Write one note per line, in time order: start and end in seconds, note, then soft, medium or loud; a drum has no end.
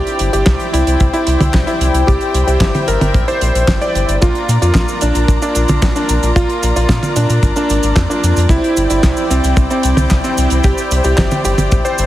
0.00 0.30 C4 medium
0.00 0.30 E4 medium
0.00 4.18 E4 medium
0.00 0.26 G4 loud
0.00 0.30 G4 medium
0.00 4.18 C5 medium
0.00 0.30 D5 medium
0.00 2.03 D5 medium
0.00 4.18 G5 loud
0.07 closed hi-hat soft
0.19 0.29 G1 loud
0.19 closed hi-hat loud
0.33 0.43 G1 medium
0.33 0.70 C4 medium
0.33 0.70 E4 medium
0.33 0.70 G4 medium
0.33 0.66 G4 loud
0.33 0.70 D5 medium
0.33 closed hi-hat medium
0.46 0.56 C2 loud
0.46 kick loud
0.46 snare loud
0.46 clap loud
0.46 closed hi-hat medium
0.60 closed hi-hat soft
0.73 0.83 C2 loud
0.73 1.10 C4 medium
0.73 1.10 E4 medium
0.73 1.06 E4 loud
0.73 1.10 G4 medium
0.73 1.10 D5 medium
0.73 closed hi-hat loud
0.87 0.96 C2 medium
0.87 closed hi-hat medium
1.00 1.10 C2 loud
1.00 kick loud
1.00 closed hi-hat medium
1.13 1.64 C4 medium
1.13 1.64 E4 medium
1.13 1.57 E4 loud
1.13 1.64 G4 medium
1.13 1.64 D5 medium
1.13 closed hi-hat soft
1.27 1.36 C2 medium
1.27 closed hi-hat medium
1.40 1.50 C2 medium
1.40 closed hi-hat medium
1.40 high tom medium
1.54 1.63 C2 loud
1.54 kick loud
1.54 snare loud
1.54 clap loud
1.54 closed hi-hat medium
1.67 2.04 C4 medium
1.67 2.00 E4 medium
1.67 2.04 E4 medium
1.67 2.04 G4 medium
1.67 2.04 D5 medium
1.67 closed hi-hat soft
1.80 1.90 C2 medium
1.80 closed hi-hat loud
1.94 2.03 C2 medium
1.94 closed hi-hat medium
2.07 2.17 C2 loud
2.07 2.44 C4 medium
2.07 2.44 E4 medium
2.07 2.40 G4 loud
2.07 2.44 G4 medium
2.07 2.44 D5 medium
2.07 4.19 E5 medium
2.07 kick loud
2.07 closed hi-hat medium
2.21 closed hi-hat soft
2.34 2.44 C2 loud
2.34 closed hi-hat loud
2.47 2.57 C2 medium
2.47 2.84 C4 medium
2.47 2.84 E4 medium
2.47 2.80 G4 loud
2.47 2.84 G4 medium
2.47 2.84 D5 medium
2.47 closed hi-hat medium
2.61 2.70 G1 loud
2.61 kick loud
2.61 snare loud
2.61 clap loud
2.61 closed hi-hat medium
2.75 closed hi-hat soft
2.75 high tom medium
2.88 2.97 G1 loud
2.88 3.25 C4 medium
2.88 3.25 E4 medium
2.88 3.25 G4 medium
2.88 3.20 A#4 loud
2.88 3.25 D5 medium
2.88 closed hi-hat loud
3.01 3.11 G1 medium
3.01 closed hi-hat medium
3.01 high tom medium
3.14 3.24 A#1 loud
3.14 kick loud
3.14 closed hi-hat medium
3.28 3.78 C4 medium
3.28 3.78 E4 medium
3.28 3.78 G4 medium
3.28 3.71 C5 medium
3.28 3.78 D5 medium
3.28 closed hi-hat soft
3.41 3.51 A#1 medium
3.41 closed hi-hat loud
3.55 3.64 A#1 medium
3.55 closed hi-hat medium
3.68 3.77 G1 loud
3.68 kick loud
3.68 snare loud
3.68 clap medium
3.68 closed hi-hat medium
3.81 4.18 C4 medium
3.81 4.18 E4 medium
3.81 4.18 G4 medium
3.81 4.18 D5 medium
3.81 4.14 D5 medium
3.81 closed hi-hat soft
3.95 4.04 G1 medium
3.95 closed hi-hat loud
4.08 4.18 G1 medium
4.08 closed hi-hat medium
4.21 4.32 A#1 loud
4.21 4.58 A#3 medium
4.21 4.58 D4 medium
4.21 4.58 F4 medium
4.21 4.54 F4 loud
4.21 8.46 F4 medium
4.21 8.46 A#4 medium
4.21 4.58 D5 medium
4.21 12.06 D5 medium
4.21 8.46 A#5 medium
4.21 kick loud
4.21 closed hi-hat medium
4.21 cabasa medium
4.35 closed hi-hat soft
4.48 4.58 A#2 loud
4.48 closed hi-hat medium
4.48 cabasa medium
4.62 4.71 F2 medium
4.62 4.99 A#3 medium
4.62 4.99 D4 medium
4.62 4.99 F4 medium
4.62 4.94 F4 loud
4.62 4.99 D5 medium
4.62 closed hi-hat medium
4.62 cabasa soft
4.74 4.85 A#1 loud
4.74 kick loud
4.74 snare loud
4.74 clap medium
4.74 closed hi-hat medium
4.74 cabasa medium
4.88 closed hi-hat soft
4.88 cabasa soft
5.01 5.12 A#1 medium
5.01 5.39 A#3 medium
5.01 5.39 D4 medium
5.01 5.35 D4 medium
5.01 5.39 F4 medium
5.01 5.39 D5 medium
5.01 closed hi-hat loud
5.01 cabasa medium
5.15 5.25 A#1 medium
5.15 closed hi-hat medium
5.15 cabasa soft
5.28 5.38 A#1 loud
5.28 kick loud
5.28 closed hi-hat medium
5.28 cabasa medium
5.42 5.93 A#3 medium
5.42 5.92 D4 medium
5.42 5.86 D4 loud
5.42 5.93 F4 medium
5.42 5.93 D5 medium
5.42 closed hi-hat soft
5.42 cabasa soft
5.55 5.65 A#1 loud
5.55 closed hi-hat medium
5.55 cabasa medium
5.68 5.78 A#1 medium
5.68 closed hi-hat medium
5.68 high tom medium
5.68 cabasa soft
5.82 5.92 A#1 loud
5.82 kick loud
5.82 snare loud
5.82 clap loud
5.82 closed hi-hat medium
5.82 cabasa medium
5.96 6.33 A#3 medium
5.96 6.33 D4 medium
5.96 6.28 D4 medium
5.96 6.33 F4 medium
5.96 6.33 D5 medium
5.96 closed hi-hat soft
5.96 cabasa soft
6.09 6.19 A#1 loud
6.09 closed hi-hat medium
6.09 cabasa medium
6.23 6.32 A#1 medium
6.23 closed hi-hat medium
6.23 cabasa soft
6.36 6.45 A#1 loud
6.36 6.73 A#3 medium
6.36 6.73 D4 medium
6.36 6.73 F4 medium
6.36 6.68 F4 loud
6.36 6.73 D5 medium
6.36 kick loud
6.36 closed hi-hat medium
6.36 cabasa medium
6.49 closed hi-hat soft
6.63 6.72 A#1 loud
6.63 closed hi-hat loud
6.63 cabasa medium
6.76 6.86 A#1 medium
6.76 7.13 A#3 medium
6.76 7.13 D4 medium
6.76 7.13 F4 medium
6.76 7.09 F4 loud
6.76 7.13 D5 medium
6.76 closed hi-hat medium
6.76 cabasa medium
6.89 6.99 A#2 loud
6.89 kick loud
6.89 snare loud
6.89 clap medium
6.89 closed hi-hat medium
6.89 cabasa medium
7.03 closed hi-hat soft
7.03 high tom medium
7.03 cabasa soft
7.16 7.26 A#2 medium
7.16 7.53 A#3 medium
7.16 7.53 D4 medium
7.16 7.49 D4 loud
7.16 7.53 F4 medium
7.16 7.53 D5 medium
7.16 closed hi-hat loud
7.16 cabasa medium
7.30 7.39 A#2 medium
7.30 closed hi-hat medium
7.30 cabasa soft
7.43 7.52 G#1 loud
7.43 kick loud
7.43 closed hi-hat medium
7.43 cabasa medium
7.56 8.07 A#3 medium
7.56 8.07 D4 medium
7.56 8.00 D4 loud
7.56 8.07 F4 medium
7.56 8.07 D5 medium
7.56 closed hi-hat soft
7.56 cabasa soft
7.70 7.79 G#1 medium
7.70 closed hi-hat loud
7.70 cabasa medium
7.83 7.93 G#1 medium
7.83 closed hi-hat medium
7.83 cabasa medium
7.96 8.06 F2 loud
7.96 kick loud
7.96 snare loud
7.96 clap loud
7.96 closed hi-hat medium
7.96 cabasa medium
8.10 8.47 A#3 medium
8.10 8.47 D4 medium
8.10 8.43 D4 medium
8.10 8.47 F4 medium
8.10 8.47 D5 medium
8.10 closed hi-hat soft
8.10 cabasa soft
8.23 8.33 F2 medium
8.23 closed hi-hat loud
8.23 cabasa medium
8.37 8.46 F2 medium
8.37 closed hi-hat medium
8.37 cabasa medium
8.49 8.59 C2 loud
8.49 8.87 C4 medium
8.49 8.83 E4 loud
8.49 8.87 E4 medium
8.49 12.06 E4 medium
8.49 8.87 G4 medium
8.49 12.06 C5 medium
8.49 8.87 D5 medium
8.49 12.06 G5 medium
8.49 kick loud
8.49 closed hi-hat medium
8.49 cabasa medium
8.64 closed hi-hat soft
8.77 8.86 G1 loud
8.77 closed hi-hat medium
8.77 cabasa medium
8.90 9.00 G1 medium
8.90 9.27 C4 medium
8.90 9.23 E4 loud
8.90 9.27 E4 medium
8.90 9.27 G4 medium
8.90 9.27 D5 medium
8.90 closed hi-hat medium
8.90 cabasa medium
9.03 9.13 C2 loud
9.03 kick loud
9.03 snare loud
9.03 clap loud
9.03 closed hi-hat medium
9.03 cabasa medium
9.17 closed hi-hat soft
9.17 cabasa soft
9.30 9.40 C2 loud
9.30 9.63 C4 medium
9.30 9.67 C4 medium
9.30 9.67 E4 medium
9.30 9.67 G4 medium
9.30 9.67 D5 medium
9.30 closed hi-hat medium
9.30 cabasa medium
9.44 9.53 C2 medium
9.44 closed hi-hat medium
9.44 cabasa medium
9.57 9.67 C2 loud
9.57 kick loud
9.57 closed hi-hat medium
9.57 cabasa medium
9.70 10.21 C4 medium
9.70 10.14 C4 medium
9.70 10.21 E4 medium
9.70 10.21 G4 medium
9.70 10.21 D5 medium
9.70 closed hi-hat soft
9.70 cabasa soft
9.83 9.94 C2 medium
9.83 closed hi-hat loud
9.83 cabasa medium
9.97 10.07 C2 medium
9.97 closed hi-hat medium
9.97 high tom medium
9.97 cabasa soft
10.10 10.21 C2 loud
10.10 kick loud
10.10 snare loud
10.10 clap loud
10.10 closed hi-hat medium
10.10 cabasa medium
10.24 10.61 C4 medium
10.24 10.57 C4 medium
10.24 10.61 E4 medium
10.24 10.61 G4 medium
10.24 10.61 D5 medium
10.24 closed hi-hat soft
10.24 cabasa soft
10.38 10.47 C2 medium
10.38 closed hi-hat loud
10.38 cabasa medium
10.50 10.61 C2 medium
10.50 closed hi-hat medium
10.50 cabasa soft
10.64 10.74 C2 loud
10.64 11.01 C4 medium
10.64 11.01 E4 medium
10.64 10.97 G4 loud
10.64 11.01 G4 medium
10.64 11.01 D5 medium
10.64 kick loud
10.64 closed hi-hat medium
10.64 cabasa medium
10.78 closed hi-hat soft
10.78 cabasa soft
10.91 11.01 C2 loud
10.91 closed hi-hat loud
10.91 cabasa medium
11.04 11.14 C2 medium
11.04 11.42 C4 medium
11.04 11.42 E4 medium
11.04 11.37 G4 loud
11.04 11.42 G4 medium
11.04 11.42 D5 medium
11.04 closed hi-hat medium
11.04 cabasa soft
11.17 11.28 G1 loud
11.17 kick loud
11.17 snare loud
11.17 clap loud
11.17 closed hi-hat medium
11.17 cabasa medium
11.31 closed hi-hat soft
11.31 high tom medium
11.31 cabasa soft
11.45 11.54 G1 loud
11.45 11.82 C4 medium
11.45 11.82 E4 medium
11.45 11.77 G4 loud
11.45 11.82 G4 medium
11.45 11.82 D5 medium
11.45 closed hi-hat loud
11.45 cabasa medium
11.58 11.68 G1 medium
11.58 closed hi-hat medium
11.58 high tom medium
11.58 cabasa soft
11.72 11.81 A#1 loud
11.72 kick loud
11.72 closed hi-hat medium
11.72 cabasa medium
11.85 12.06 C4 medium
11.85 12.06 E4 medium
11.85 12.06 G4 medium
11.85 12.06 C5 medium
11.85 12.06 D5 medium
11.85 closed hi-hat soft
11.85 cabasa soft
11.98 12.06 G1 loud
11.98 closed hi-hat loud
11.98 cabasa medium